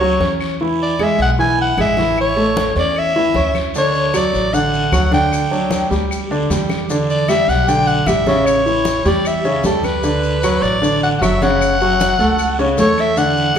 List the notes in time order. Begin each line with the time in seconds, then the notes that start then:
Already playing: C#2 C#5
0.01 F#3 F#4, high conga
0.20 E2 C#4 C#5, high conga, short guiro
0.41 short guiro, claves
0.60 E3 E4, high conga, long guiro
0.80 D5, high conga
0.99 G#3 G#4 E5, high conga, short guiro, claves
1.18 B1 F#5, high conga, short guiro
1.38 E3 E4 G#5, high conga, long guiro
1.58 F#5, high conga
1.77 A1 G#3 G#4 E5, high conga, short guiro, claves
1.97 E3 E4, high conga, short guiro
2.17 C#5, high conga, long guiro, claves
2.36 A3 A4, high conga
2.56 high conga, short guiro
2.76 E2 C#4 C#5 D5, short guiro
2.96 E5, high conga, long guiro, claves
3.16 E3 E4, high conga
3.34 D2 C#4 C#5, high conga, short guiro
3.55 high conga, short guiro, claves
3.74 D3 D4 C#5, high conga, long guiro, maracas
3.94 high conga, maracas
4.14 F#3 F#4 D5, high conga, short guiro, claves, maracas
4.33 A1, high conga, short guiro, maracas
4.53 D3 D4 F#5, high conga, long guiro, maracas
4.73 high conga, maracas
4.92 D2 F#3 F#4, high conga, short guiro, claves, maracas
5.11 D3 D4 G5, high conga, short guiro, maracas
5.32 high conga, long guiro, claves, maracas
5.51 F#3 D4, high conga, maracas
5.71 high conga, short guiro, maracas
5.91 D2 G3 G4, short guiro, maracas
6.11 high conga, long guiro, claves, maracas
6.30 D3 D4, high conga, maracas
6.50 E2 G3 G4, high conga, short guiro, maracas
6.69 high conga, short guiro, claves, maracas
6.90 D3 D4, high conga, long guiro, maracas
7.09 D5, high conga, maracas
7.28 G3 G4 E5, high conga, short guiro, claves, maracas
7.48 B1 F#5, high conga, short guiro, maracas
7.67 D3 D4 G5, high conga, long guiro, maracas
7.87 F#5, high conga, maracas
8.06 A1 G3 G4 E5, high conga, short guiro, claves, maracas
8.27 C#3 C#4, high conga, short guiro, maracas
8.45 C#5, high conga, long guiro, claves, maracas
8.66 E3 E4, high conga, maracas
8.85 high conga, short guiro, maracas
9.05 E2 G3 G4 D5, short guiro, maracas
9.25 E5, high conga, long guiro, claves, maracas
9.45 C#3 C#4, high conga, maracas
9.63 D2 G3 G4 A4, high conga, short guiro, maracas
9.84 B4, high conga, short guiro, claves, maracas
10.03 D3 D4, high conga, long guiro, maracas
10.23 high conga, maracas
10.43 F#3 F#4, high conga, short guiro, claves, maracas
10.62 A1 D5, high conga, short guiro, maracas
10.82 D3 D4, high conga, long guiro, maracas
11.03 F#5, high conga, maracas
11.18 F#1 F#3 F#4 F#5, short guiro
11.22 E5, high conga, claves, maracas
11.41 C#3 C#4 F#5, high conga, short guiro, maracas
11.61 high conga, long guiro, claves, maracas
11.81 F#3 F#4, high conga, maracas
12.00 high conga, short guiro, maracas
12.19 C#2 A3 A4, short guiro, maracas
12.39 high conga, long guiro, claves, maracas
12.59 C#3 C#4, high conga, maracas
12.78 E2 A3 A4 C#5, high conga, short guiro, maracas
12.97 E5, short guiro, claves, maracas
13.16 D3 D4 F#5, high conga, long guiro, maracas
13.36 high conga, maracas
13.55 high conga